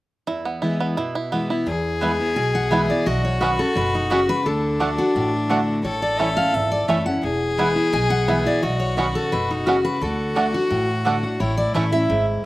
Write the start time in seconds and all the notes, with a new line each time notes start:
0.27 E2 E4
0.45 B3
0.62 E3 G#3 B3 E4
0.80 B3
0.97 B2 E4
1.15 E4
1.32 E3 G#3 B3 E4
1.50 B3 E4
1.66 E2 G#4
2.01 E3 G#3 B3 E4 B4 G#5
2.20 B3 E4
2.36 B1 B2 G#5
2.55 F#5
2.71 E3 G#3 B3 E4 B4 E5 G#5
2.90 B3 E4 D5
3.06 B1 B2 F#4 D#5
3.25 C#5
3.40 B2 D#3 B3 C#4 F#4 B4 D#5 B5
3.58 C#4 F#4 A4
3.75 F#1 B2 B4
3.95 D#4
4.10 C#3 B3 C#4 F#4 D#5 B5
4.29 B4
4.45 D2 D3 D4 A4
4.80 D3 A3 D4 F#4 D5 A5
4.98 D4 F#4
5.15 A1 A2
5.49 D3 A3 D4 F#4 D5 A5
5.84 A1 A2 A4 C#5
6.02 D5
6.19 E3 A3 C#4 E4 C#5 E5 A5
6.37 C#4 E4 F5
6.54 G#1 E2 E5
6.72 D5
6.88 F#1 E3 A3 C#4 E4 C#5 E5 A5
7.06 C#4 E4 F#5
7.22 E1 E2 G#4
7.57 E3 G#3 B3 E4 B4 G#5
7.76 B3 E4
7.93 B1 B2 G#5
8.10 F#5
8.28 E3 G#3 B3 E4 B4 E5 G#5
8.46 B3 E4 D5
8.62 B1 B2 F#4 D#5
8.80 C#5
8.97 B2 D#3 B3 C#4 F#4 B4 D#5 B5
9.15 A4
9.32 F#1 B2 B4
9.51 D#4
9.66 C#3 B3 C#4 F#4 D#5 B5
9.85 B4
10.01 D2 D3 F#4 A4
10.35 D3 A3 D4 F#4 D5 A5
10.53 D4 F#4
10.70 A1 A2
11.05 D3 A3 D4 F#4 D5 A5
11.23 D4 F#4
11.40 A1 A2 E4 C#5
11.57 D5
11.74 A1 E3 A3 C#4 E4 C#5 E5 A5
11.92 C#4 E4 E5
12.09 G#1 G#2